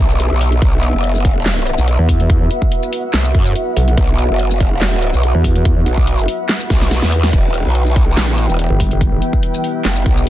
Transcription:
Already playing: E3 B3 G4 E5
0.00 B1
0.10 shaker
0.20 closed hi-hat
0.31 B1
0.41 open hi-hat
0.52 closed hi-hat
0.62 B1 B4 E5 F#5, kick, closed hi-hat
0.83 F#4, closed hi-hat
0.94 F#1
1.04 closed hi-hat
1.15 shaker
1.25 kick, open hi-hat
1.46 snare, clap, closed hi-hat
1.67 closed hi-hat
1.78 B1, shaker
1.88 closed hi-hat
1.99 E2
2.09 kick, open hi-hat
2.20 closed hi-hat
2.30 kick, closed hi-hat
2.41 E2
2.51 closed hi-hat
2.62 kick
2.72 closed hi-hat
2.83 shaker
2.93 open hi-hat
3.14 C2, snare, clap, closed hi-hat
3.25 shaker
3.35 F#2, kick, closed hi-hat
3.46 shaker
3.56 closed hi-hat
3.76 B1, open hi-hat
3.88 closed hi-hat
3.98 B1, kick, closed hi-hat
4.18 closed hi-hat
4.30 F#1
4.39 closed hi-hat
4.51 shaker
4.60 kick, open hi-hat
4.81 snare, clap, closed hi-hat
5.02 closed hi-hat
5.14 B1, shaker
5.23 closed hi-hat
5.35 E2
5.44 kick, open hi-hat
5.56 closed hi-hat
5.65 kick, closed hi-hat
5.76 E2
5.86 B1, closed hi-hat
5.98 kick
6.07 closed hi-hat
6.18 shaker
6.28 open hi-hat
6.49 snare, clap, closed hi-hat
6.60 shaker
6.70 B1, kick, snare, closed hi-hat
6.81 snare, shaker
6.91 snare, closed hi-hat
7.02 E2, snare
7.12 open hi-hat
7.23 snare, closed hi-hat
7.33 E1 E3 B3 E4 G5, kick, closed hi-hat, crash
7.54 closed hi-hat
7.65 B1
7.75 closed hi-hat
7.86 G4, shaker
7.96 kick, open hi-hat
8.17 snare, clap, closed hi-hat
8.23 A#1
8.38 closed hi-hat
8.45 B5
8.49 E1, shaker
8.59 closed hi-hat
8.70 G1
8.80 kick, open hi-hat
8.91 closed hi-hat
9.01 kick, closed hi-hat
9.12 G1
9.22 closed hi-hat
9.33 kick
9.43 closed hi-hat
9.54 shaker
9.64 open hi-hat
9.85 F#1, snare, clap, closed hi-hat
9.96 shaker
10.06 B1, kick, closed hi-hat
10.17 shaker

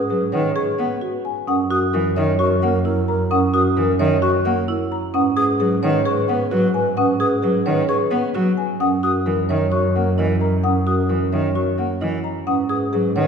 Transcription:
Already playing: G#2 G#4
0.10 F#3 G#4 B4
0.32 D#3 B4 C#5 F#5
0.56 G#4 B4 C#6
0.78 B3 B4 F#5
1.01 F#4 B4
1.25 G#5
1.47 F#2 C#4 A#4 F#5 D#6
1.71 F#4 A#4 D#6
1.93 E3 A#4
2.16 D#3 A#4 C#5 E5
2.39 F#4 A#4 C#5 C#6
2.62 A#3 A#4 F#5
2.85 E4 A#4
3.08 A#4 A#5
3.31 C#4 A#4 F#5 D#6
3.54 F#4 A#4 D#6
3.77 E3 A#4
3.99 D#3 A#4 C#5 E5
4.22 F#4 A#4 C#5 C#6
4.45 A#3 A#4 F#5
4.68 E4 A#4
4.92 A#5
5.14 G#2 C#4 B4 F#5 D#6
5.36 G#4 B4 D#6
5.60 F#3 G#4 B4
5.82 D#3 B4 C#5 F#5
6.05 G#4 B4 C#6
6.28 B3 B4 F#5
6.51 F#3 F#4 B4
6.74 B4 G#5
6.97 C#4 B4 F#5 D#6
7.20 G#4 B4 D#6
7.42 F#3 G#4 B4
7.66 D#3 B4 C#5 F#5
7.89 G#4 B4 C#6
8.11 B3 B4 F#5
8.34 F#3 F#4 B4
8.57 G#5
8.80 F#2 C#4 A#4 F#5 D#6
9.03 F#4 A#4 D#6
9.26 E3 A#4
9.49 D#3 A#4 C#5 E5
9.71 F#4 A#4 C#5 C#6
9.94 A#3 A#4 F#5
10.17 E3 E4 A#4 D#5
10.40 A#4 A#5
10.63 C#4 A#4 F#5 D#6
10.87 F#4 A#4 D#6
11.09 E3 A#4
11.32 D#3 A#4 C#5 E5
11.55 F#4 A#4 C#5 C#6
11.78 A#3 A#4 F#5
12.00 E3 E4 A#4 D#5
12.24 A#5
12.46 G#2 C#4 B4 F#5 D#6
12.69 G#4 B4 D#6
12.93 F#3 G#4 B4
13.16 D#3 B4 C#5 F#5

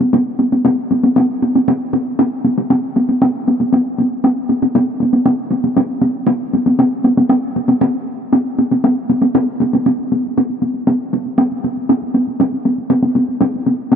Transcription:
0.01 taiko high
0.13 taiko high
0.39 taiko high
0.53 taiko high
0.65 taiko high
0.91 taiko high
1.03 taiko high
1.16 taiko high
1.43 taiko high
1.55 taiko high
1.68 taiko high
1.93 taiko high
2.19 taiko high
2.44 taiko high
2.58 taiko high
2.70 taiko high
2.96 taiko high
3.09 taiko high
3.22 taiko high
3.48 taiko high
3.60 taiko high
3.73 taiko high
3.98 taiko high
4.24 taiko high
4.49 taiko high
4.62 taiko high
4.75 taiko high
5.00 taiko high
5.13 taiko high
5.26 taiko high
5.51 taiko high
5.64 taiko high
5.77 taiko high
6.01 taiko high
6.27 taiko high
6.53 taiko high
6.66 taiko high
6.79 taiko high
7.04 taiko high
7.17 taiko high
7.30 taiko high
7.56 taiko high
7.68 taiko high
7.81 taiko high
8.33 taiko high
8.59 taiko high
8.71 taiko high
8.84 taiko high
9.10 taiko high
9.22 taiko high
9.35 taiko high
9.60 taiko high
9.73 taiko high
9.86 taiko high
9.99 taiko high
10.12 taiko high
10.25 taiko high
10.38 taiko high
10.50 taiko high
10.62 taiko high
10.74 taiko high
10.87 taiko high
11.13 taiko high
11.26 taiko high
11.38 taiko high
11.52 taiko high
11.64 taiko high
11.77 taiko high
11.89 taiko high
12.02 taiko high
12.14 taiko high
12.27 taiko high
12.40 taiko high
12.52 taiko high
12.65 taiko high
12.78 taiko high
12.90 taiko high
13.03 taiko high
13.15 taiko high
13.28 taiko high
13.41 taiko high
13.54 taiko high
13.66 taiko high
13.92 taiko high

